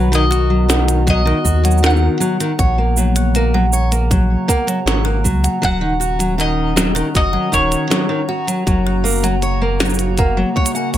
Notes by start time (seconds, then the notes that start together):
Already playing: B1 D#3 F#3 B3 F#4 B4 A#5
0.12 D#3 D#5, closed hi-hat, cabasa
0.31 F#4 F#6, closed hi-hat, cabasa
0.50 F#3
0.68 D#3 F#5, snare, cabasa
0.88 closed hi-hat, cabasa
1.07 F#3 D#5, kick, closed hi-hat, cabasa
1.25 D#3 F#6
1.45 D#2 F#4, kick, cabasa
1.64 F#3 F#5, closed hi-hat, cabasa
1.71 cabasa
1.78 cabasa
1.83 D#3 F#5, snare, closed hi-hat, cabasa
1.90 cabasa
1.96 cabasa
2.20 F#3 F#6, cabasa
2.40 D#3, closed hi-hat, cabasa
2.59 A#1 C#3 A#3 F#4 C#5 F#5, kick, closed hi-hat, cabasa
2.78 A#3
2.97 F#3, cabasa
3.16 F#6, closed hi-hat, cabasa
3.35 A#3, closed hi-hat, cabasa
3.54 F#3 F#5
3.73 C#5, cabasa
3.92 A#3, closed hi-hat, cabasa
4.11 F#3 F#6, kick, closed hi-hat, cabasa
4.48 A#3 F#5, kick, cabasa
4.67 F#3, closed hi-hat, cabasa
4.86 G#1 C#5, snare, closed hi-hat, cabasa
5.05 A#3 F#6
5.24 C#2 F#3, kick, cabasa
5.44 F#5, closed hi-hat, cabasa
5.62 D#1 D#3 F#3 C#4 F#5, kick, closed hi-hat, cabasa
5.81 D#3
6.00 F#4 F#6, cabasa
6.19 F#3, closed hi-hat, cabasa
6.38 D#3 D#5 F#5, closed hi-hat, cabasa
6.76 F#3, snare, cabasa
6.95 D#3 F#6, closed hi-hat, cabasa
7.15 F#1 F#4 D#5, kick, closed hi-hat, cabasa
7.33 F#3 F#5
7.52 D#1 D#3 C#5, kick, cabasa
7.72 closed hi-hat, cabasa
7.90 F#3 F#6, snare, closed hi-hat, cabasa
8.09 D#3
8.29 F#4 F#5
8.47 F#3, closed hi-hat, cabasa
8.66 F#1 C#3 F#3 A#3, kick, closed hi-hat, cabasa
8.87 F#6
9.04 A#3, cabasa
9.08 cabasa
9.10 cabasa
9.12 cabasa
9.15 cabasa
9.17 cabasa
9.20 cabasa
9.22 F#3, closed hi-hat, cabasa
9.24 F#5, cabasa
9.42 C#5, closed hi-hat, cabasa
9.62 A#3
9.80 F#3 F#6, snare, cabasa
9.85 cabasa
9.90 cabasa
9.94 cabasa
9.99 closed hi-hat, cabasa
10.18 A#3 F#5, kick, closed hi-hat, cabasa
10.37 F#3
10.56 C#5 F#6, kick
10.66 closed hi-hat, cabasa
10.75 F#5 G#5, cabasa
10.94 C#2 C#5, closed hi-hat, cabasa